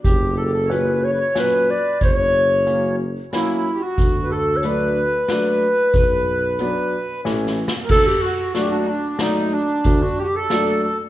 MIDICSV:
0, 0, Header, 1, 6, 480
1, 0, Start_track
1, 0, Tempo, 653595
1, 34, Time_signature, 3, 2, 24, 8
1, 8146, End_track
2, 0, Start_track
2, 0, Title_t, "Accordion"
2, 0, Program_c, 0, 21
2, 31, Note_on_c, 0, 67, 77
2, 257, Note_off_c, 0, 67, 0
2, 266, Note_on_c, 0, 69, 80
2, 318, Note_off_c, 0, 69, 0
2, 330, Note_on_c, 0, 67, 58
2, 380, Note_off_c, 0, 67, 0
2, 392, Note_on_c, 0, 69, 73
2, 483, Note_on_c, 0, 73, 59
2, 514, Note_off_c, 0, 69, 0
2, 523, Note_on_c, 0, 71, 61
2, 525, Note_off_c, 0, 73, 0
2, 744, Note_off_c, 0, 71, 0
2, 774, Note_on_c, 0, 73, 78
2, 814, Note_off_c, 0, 73, 0
2, 833, Note_on_c, 0, 71, 70
2, 873, Note_off_c, 0, 71, 0
2, 884, Note_on_c, 0, 73, 85
2, 1001, Note_off_c, 0, 73, 0
2, 1007, Note_on_c, 0, 71, 84
2, 1455, Note_off_c, 0, 71, 0
2, 1477, Note_on_c, 0, 73, 83
2, 2172, Note_off_c, 0, 73, 0
2, 2440, Note_on_c, 0, 64, 69
2, 2729, Note_off_c, 0, 64, 0
2, 2744, Note_on_c, 0, 67, 59
2, 2791, Note_on_c, 0, 66, 76
2, 2800, Note_off_c, 0, 67, 0
2, 3109, Note_on_c, 0, 71, 52
2, 3116, Note_off_c, 0, 66, 0
2, 3159, Note_on_c, 0, 69, 77
2, 3163, Note_off_c, 0, 71, 0
2, 3403, Note_on_c, 0, 71, 92
2, 3410, Note_off_c, 0, 69, 0
2, 5294, Note_off_c, 0, 71, 0
2, 5754, Note_on_c, 0, 70, 54
2, 5804, Note_off_c, 0, 70, 0
2, 5806, Note_on_c, 0, 69, 98
2, 6027, Note_off_c, 0, 69, 0
2, 6055, Note_on_c, 0, 66, 86
2, 6275, Note_off_c, 0, 66, 0
2, 6286, Note_on_c, 0, 66, 72
2, 6329, Note_on_c, 0, 67, 61
2, 6336, Note_off_c, 0, 66, 0
2, 6381, Note_on_c, 0, 66, 72
2, 6382, Note_off_c, 0, 67, 0
2, 6469, Note_on_c, 0, 63, 50
2, 6518, Note_on_c, 0, 62, 75
2, 6520, Note_off_c, 0, 63, 0
2, 6523, Note_off_c, 0, 66, 0
2, 6751, Note_on_c, 0, 63, 82
2, 6765, Note_off_c, 0, 62, 0
2, 6988, Note_on_c, 0, 62, 77
2, 7001, Note_off_c, 0, 63, 0
2, 7481, Note_on_c, 0, 67, 81
2, 7485, Note_off_c, 0, 62, 0
2, 7509, Note_off_c, 0, 67, 0
2, 7511, Note_on_c, 0, 66, 74
2, 7538, Note_off_c, 0, 66, 0
2, 7540, Note_on_c, 0, 67, 71
2, 7598, Note_off_c, 0, 67, 0
2, 7603, Note_on_c, 0, 69, 97
2, 7940, Note_off_c, 0, 69, 0
2, 7951, Note_on_c, 0, 69, 67
2, 8062, Note_off_c, 0, 69, 0
2, 8146, End_track
3, 0, Start_track
3, 0, Title_t, "Clarinet"
3, 0, Program_c, 1, 71
3, 32, Note_on_c, 1, 67, 85
3, 279, Note_on_c, 1, 69, 75
3, 290, Note_off_c, 1, 67, 0
3, 516, Note_on_c, 1, 71, 81
3, 527, Note_off_c, 1, 69, 0
3, 765, Note_on_c, 1, 73, 85
3, 776, Note_off_c, 1, 71, 0
3, 951, Note_off_c, 1, 73, 0
3, 951, Note_on_c, 1, 73, 69
3, 1028, Note_on_c, 1, 71, 103
3, 1039, Note_off_c, 1, 73, 0
3, 1251, Note_on_c, 1, 74, 91
3, 1262, Note_off_c, 1, 71, 0
3, 1486, Note_off_c, 1, 74, 0
3, 1502, Note_on_c, 1, 73, 105
3, 2185, Note_off_c, 1, 73, 0
3, 2450, Note_on_c, 1, 64, 91
3, 2813, Note_on_c, 1, 66, 100
3, 2824, Note_off_c, 1, 64, 0
3, 3181, Note_on_c, 1, 69, 92
3, 3192, Note_off_c, 1, 66, 0
3, 3354, Note_on_c, 1, 73, 54
3, 3365, Note_off_c, 1, 69, 0
3, 3426, Note_on_c, 1, 71, 97
3, 3437, Note_off_c, 1, 73, 0
3, 5335, Note_off_c, 1, 71, 0
3, 5810, Note_on_c, 1, 69, 115
3, 5927, Note_on_c, 1, 67, 104
3, 5938, Note_off_c, 1, 69, 0
3, 6035, Note_on_c, 1, 66, 97
3, 6046, Note_off_c, 1, 67, 0
3, 6275, Note_off_c, 1, 66, 0
3, 6279, Note_on_c, 1, 66, 94
3, 6391, Note_off_c, 1, 66, 0
3, 6396, Note_on_c, 1, 62, 83
3, 6509, Note_off_c, 1, 62, 0
3, 6521, Note_on_c, 1, 62, 84
3, 6743, Note_off_c, 1, 62, 0
3, 6751, Note_on_c, 1, 63, 82
3, 7003, Note_on_c, 1, 62, 94
3, 7014, Note_off_c, 1, 63, 0
3, 7363, Note_on_c, 1, 66, 92
3, 7374, Note_off_c, 1, 62, 0
3, 7491, Note_on_c, 1, 67, 86
3, 7502, Note_off_c, 1, 66, 0
3, 7610, Note_on_c, 1, 69, 86
3, 7621, Note_off_c, 1, 67, 0
3, 8079, Note_off_c, 1, 69, 0
3, 8146, End_track
4, 0, Start_track
4, 0, Title_t, "Upright piano"
4, 0, Program_c, 2, 0
4, 512, Note_on_c, 2, 46, 51
4, 512, Note_on_c, 2, 54, 46
4, 512, Note_on_c, 2, 61, 68
4, 755, Note_off_c, 2, 61, 0
4, 756, Note_off_c, 2, 46, 0
4, 756, Note_off_c, 2, 54, 0
4, 993, Note_on_c, 2, 61, 66
4, 994, Note_on_c, 2, 54, 63
4, 995, Note_on_c, 2, 46, 56
4, 1237, Note_off_c, 2, 54, 0
4, 1237, Note_off_c, 2, 61, 0
4, 1238, Note_off_c, 2, 46, 0
4, 1958, Note_on_c, 2, 54, 56
4, 1958, Note_on_c, 2, 58, 50
4, 1959, Note_on_c, 2, 61, 58
4, 2201, Note_off_c, 2, 54, 0
4, 2201, Note_off_c, 2, 58, 0
4, 2202, Note_off_c, 2, 61, 0
4, 2448, Note_on_c, 2, 54, 55
4, 2448, Note_on_c, 2, 61, 64
4, 2452, Note_on_c, 2, 58, 61
4, 2686, Note_off_c, 2, 61, 0
4, 2687, Note_off_c, 2, 54, 0
4, 2688, Note_off_c, 2, 58, 0
4, 3405, Note_on_c, 2, 54, 47
4, 3407, Note_on_c, 2, 57, 55
4, 3407, Note_on_c, 2, 62, 65
4, 3646, Note_off_c, 2, 54, 0
4, 3647, Note_off_c, 2, 57, 0
4, 3647, Note_off_c, 2, 62, 0
4, 3891, Note_on_c, 2, 54, 58
4, 3892, Note_on_c, 2, 62, 67
4, 3893, Note_on_c, 2, 57, 51
4, 4129, Note_off_c, 2, 54, 0
4, 4129, Note_off_c, 2, 62, 0
4, 4130, Note_off_c, 2, 57, 0
4, 4844, Note_on_c, 2, 54, 63
4, 4851, Note_on_c, 2, 62, 63
4, 4852, Note_on_c, 2, 59, 62
4, 5084, Note_off_c, 2, 54, 0
4, 5088, Note_off_c, 2, 59, 0
4, 5088, Note_off_c, 2, 62, 0
4, 5323, Note_on_c, 2, 61, 68
4, 5325, Note_on_c, 2, 57, 60
4, 5326, Note_on_c, 2, 52, 72
4, 5563, Note_off_c, 2, 61, 0
4, 5564, Note_off_c, 2, 57, 0
4, 5565, Note_off_c, 2, 52, 0
4, 6276, Note_on_c, 2, 54, 53
4, 6276, Note_on_c, 2, 57, 50
4, 6282, Note_on_c, 2, 62, 71
4, 6518, Note_off_c, 2, 54, 0
4, 6518, Note_off_c, 2, 57, 0
4, 6521, Note_off_c, 2, 62, 0
4, 6761, Note_on_c, 2, 74, 63
4, 6764, Note_on_c, 2, 54, 56
4, 6765, Note_on_c, 2, 57, 57
4, 6999, Note_off_c, 2, 74, 0
4, 7000, Note_off_c, 2, 54, 0
4, 7001, Note_off_c, 2, 57, 0
4, 7716, Note_on_c, 2, 54, 62
4, 7718, Note_on_c, 2, 57, 52
4, 7718, Note_on_c, 2, 62, 70
4, 7953, Note_off_c, 2, 54, 0
4, 7954, Note_off_c, 2, 57, 0
4, 7954, Note_off_c, 2, 62, 0
4, 8146, End_track
5, 0, Start_track
5, 0, Title_t, "Tuba"
5, 0, Program_c, 3, 58
5, 33, Note_on_c, 3, 30, 88
5, 902, Note_off_c, 3, 30, 0
5, 1481, Note_on_c, 3, 30, 82
5, 2347, Note_off_c, 3, 30, 0
5, 2923, Note_on_c, 3, 38, 92
5, 3789, Note_off_c, 3, 38, 0
5, 4362, Note_on_c, 3, 35, 82
5, 4938, Note_off_c, 3, 35, 0
5, 5320, Note_on_c, 3, 33, 98
5, 5608, Note_off_c, 3, 33, 0
5, 5800, Note_on_c, 3, 38, 94
5, 5945, Note_off_c, 3, 38, 0
5, 7234, Note_on_c, 3, 38, 109
5, 7378, Note_off_c, 3, 38, 0
5, 8146, End_track
6, 0, Start_track
6, 0, Title_t, "Drums"
6, 33, Note_on_c, 9, 36, 94
6, 37, Note_on_c, 9, 42, 51
6, 107, Note_off_c, 9, 36, 0
6, 110, Note_off_c, 9, 42, 0
6, 522, Note_on_c, 9, 42, 38
6, 595, Note_off_c, 9, 42, 0
6, 996, Note_on_c, 9, 38, 66
6, 996, Note_on_c, 9, 42, 45
6, 1070, Note_off_c, 9, 38, 0
6, 1070, Note_off_c, 9, 42, 0
6, 1476, Note_on_c, 9, 42, 47
6, 1478, Note_on_c, 9, 36, 83
6, 1549, Note_off_c, 9, 42, 0
6, 1551, Note_off_c, 9, 36, 0
6, 1959, Note_on_c, 9, 42, 38
6, 2033, Note_off_c, 9, 42, 0
6, 2444, Note_on_c, 9, 38, 58
6, 2444, Note_on_c, 9, 42, 51
6, 2518, Note_off_c, 9, 38, 0
6, 2518, Note_off_c, 9, 42, 0
6, 2923, Note_on_c, 9, 36, 85
6, 2925, Note_on_c, 9, 42, 51
6, 2996, Note_off_c, 9, 36, 0
6, 2999, Note_off_c, 9, 42, 0
6, 3399, Note_on_c, 9, 42, 48
6, 3473, Note_off_c, 9, 42, 0
6, 3881, Note_on_c, 9, 38, 64
6, 3881, Note_on_c, 9, 42, 51
6, 3955, Note_off_c, 9, 38, 0
6, 3955, Note_off_c, 9, 42, 0
6, 4362, Note_on_c, 9, 36, 87
6, 4362, Note_on_c, 9, 42, 49
6, 4435, Note_off_c, 9, 36, 0
6, 4435, Note_off_c, 9, 42, 0
6, 4839, Note_on_c, 9, 42, 45
6, 4912, Note_off_c, 9, 42, 0
6, 5328, Note_on_c, 9, 38, 43
6, 5402, Note_off_c, 9, 38, 0
6, 5487, Note_on_c, 9, 38, 47
6, 5560, Note_off_c, 9, 38, 0
6, 5640, Note_on_c, 9, 38, 81
6, 5713, Note_off_c, 9, 38, 0
6, 5794, Note_on_c, 9, 49, 80
6, 5799, Note_on_c, 9, 36, 89
6, 5868, Note_off_c, 9, 49, 0
6, 5873, Note_off_c, 9, 36, 0
6, 6277, Note_on_c, 9, 38, 59
6, 6277, Note_on_c, 9, 42, 47
6, 6350, Note_off_c, 9, 38, 0
6, 6350, Note_off_c, 9, 42, 0
6, 6748, Note_on_c, 9, 38, 76
6, 6748, Note_on_c, 9, 42, 56
6, 6821, Note_off_c, 9, 38, 0
6, 6821, Note_off_c, 9, 42, 0
6, 7228, Note_on_c, 9, 42, 54
6, 7234, Note_on_c, 9, 36, 81
6, 7301, Note_off_c, 9, 42, 0
6, 7307, Note_off_c, 9, 36, 0
6, 7712, Note_on_c, 9, 38, 64
6, 7712, Note_on_c, 9, 42, 52
6, 7785, Note_off_c, 9, 38, 0
6, 7785, Note_off_c, 9, 42, 0
6, 8146, End_track
0, 0, End_of_file